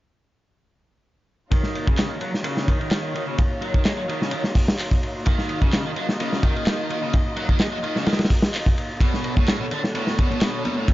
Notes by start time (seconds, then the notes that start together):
1.51 D#3 A#3 D#4 F4 F#4 C#5, kick, ride
1.63 snare
1.75 ride
1.87 C#3, kick
1.97 snare, clap, ride
2.10 D#3
2.21 F#3, ride
2.34 snare
2.44 C#3, ride
2.57 snare
2.68 D#3, kick, ride
2.80 D#3, ride
2.91 snare, clap, ride
3.15 D#3, ride
3.27 C#3
3.38 kick, ride
3.62 F#3, ride
3.74 D#3, kick
3.85 G#3, snare, clap, ride
3.97 F#3
4.08 D#3, ride
4.21 C#3, snare
4.31 D#3, ride
4.44 snare
4.55 kick, open hi-hat
4.68 snare
4.79 clap, ride
4.91 kick
5.03 ride
5.26 D#3 D#5, kick, ride
5.38 snare
5.49 ride
5.62 C#3, kick
5.73 snare, clap, ride
5.85 D#3
5.96 F#3, ride
6.09 snare
6.20 C#3, ride
6.33 snare
6.43 D#3, kick, ride
6.56 D#3, ride
6.67 snare, clap, ride
6.90 D#3, ride
7.03 C#3
7.13 kick, ride
7.36 F#3, ride
7.49 D#3, kick
7.60 G#3, snare, clap, ride
7.72 F#3
7.84 D#3, ride
7.96 C#3, snare
8.06 D#3, snare, ride
8.13 snare, ride
8.19 snare, ride
8.25 snare, ride
8.30 kick, open hi-hat
8.42 snare
8.54 clap, ride
8.66 kick
8.78 ride
9.00 B2 B3 D4 F#4 A4 C#5, kick, ride
9.14 snare
9.24 ride
9.36 A2, kick, high conga
9.48 snare, clap, ride
9.60 B2
9.71 D3, ride
9.84 snare
9.95 A2, ride
10.07 snare
10.18 B2, kick, ride
10.30 B2, ride, high conga
10.41 snare, clap, ride
10.65 B2, ride, high conga, low conga
10.77 A2
10.88 kick, ride